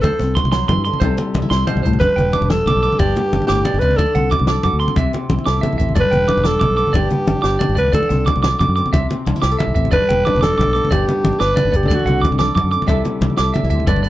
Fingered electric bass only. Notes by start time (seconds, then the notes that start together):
0.03 D2
0.20 C2
0.44 C2
0.69 F#2
0.77 G2
1.01 C2
1.34 C2
1.51 C2
1.76 C2
1.85 C2
2.01 G1
2.16 E1
2.41 E1
2.66 B1
2.75 B1
3.00 G1
3.33 G1
3.49 G1
3.74 G1
3.82 C#2
3.99 D2
4.15 C2
4.40 C2
4.65 F#2
4.73 D2
4.97 C2
5.30 C2
5.47 C2
5.73 C2
5.80 A1
5.96 G1
6.12 E1
6.37 E1
6.62 B1
6.69 B1
6.94 G1
7.28 G1
7.44 G1
7.69 G1
7.77 C#2
7.93 D2
8.10 C2
8.36 C2
8.60 F#2
8.68 F#2
8.94 C2
9.26 C2
9.43 C2
9.67 C2
9.76 A1
9.92 G1
10.10 E1
10.35 E1
10.59 B1
10.67 B1
10.92 G1
11.25 G1
11.41 G1
11.65 G1
11.73 G1
11.90 D2
12.05 C2
12.31 C2
12.56 F#2
12.64 F#2
12.88 C2
13.21 C2
13.39 C2
13.63 C2
13.71 D2
13.87 G1